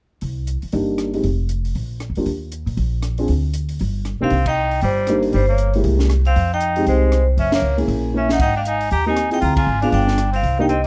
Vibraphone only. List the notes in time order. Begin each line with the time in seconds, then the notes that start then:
4.24 F5
4.49 G5
4.85 C5
5.36 C5
5.51 C#5
6.27 F5
6.54 G5
6.88 C5
7.39 E5
7.54 C#5
8.17 E5
8.33 F#5
8.43 G5
8.57 F5
8.69 G#5
8.93 A#5
9.10 G#5
9.34 G5
9.44 A#5
9.57 G#5
9.84 F5
9.94 G5
10.36 F5
10.62 G5
10.70 D#5